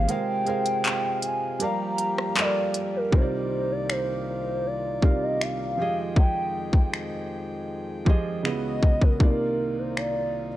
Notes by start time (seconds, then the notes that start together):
Already playing: D#3 A#3 G4 C5 C#5 F5
0.07 C3 G#3 F4 G#4 A#4 C5 G5, closed hi-hat
0.11 F5
0.45 G#3 G#4 A#4 C5, closed hi-hat
0.49 F5
0.66 closed hi-hat
0.84 clap, closed hi-hat
1.22 G#5, closed hi-hat
1.59 F3 G3 A#3 G4 A#4 D5 A#5, closed hi-hat
1.64 F5
1.98 closed hi-hat
2.18 cross-stick
2.35 G3 G4 A4 D5, clap, closed hi-hat
2.39 D5 F5
2.44 A#4
2.74 closed hi-hat
2.96 A#4
3.11 C2 C3 D#3 G3 A#3 D#4 F4 A#4 C5 D5, kick
3.15 C#5
3.22 D5
3.72 D5
3.90 C5, finger snap
4.66 D5
5.01 C3 G3 D#4 F4 A#4, kick
5.05 F5
5.23 D#5
5.41 F5, finger snap
5.77 F2 F3 G#3 F4 G4 G#4 G5
5.82 D#5
6.16 G5, kick
6.73 kick
6.94 finger snap
8.05 F3 F4 G4 G#4, kick
8.09 D#5
8.43 C#2 C#3 E3 G#3 B3 E4 F#4 D#5, finger snap
8.47 D#5
8.83 kick
9.02 A#4, kick
9.19 C2 C3 D#3 A#3 D#4 F4, kick
9.23 D5
9.79 C5
9.97 D5, finger snap